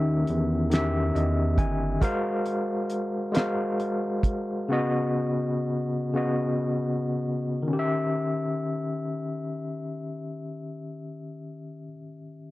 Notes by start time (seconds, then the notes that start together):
Already playing: D#2 D#3 C#4 G4 E5
0.27 E2, closed hi-hat
0.70 D#3 C#4 G4 E5, snare, closed hi-hat
1.15 E2 D#5, closed hi-hat
1.58 G1 G#5, kick, closed hi-hat
2.01 G#3 F#4 A#4 C5 F5, kick, closed hi-hat
2.46 closed hi-hat
2.90 closed hi-hat
3.32 G#3 F#4 A#4 C5, closed hi-hat
3.36 F5, snare
3.80 closed hi-hat
4.23 kick, closed hi-hat
4.68 C#3 B3 F#4
4.73 D#5
6.13 C#3 B3 F#4
6.17 D#5
7.62 D#3
7.68 C#4
7.73 G4
7.79 E5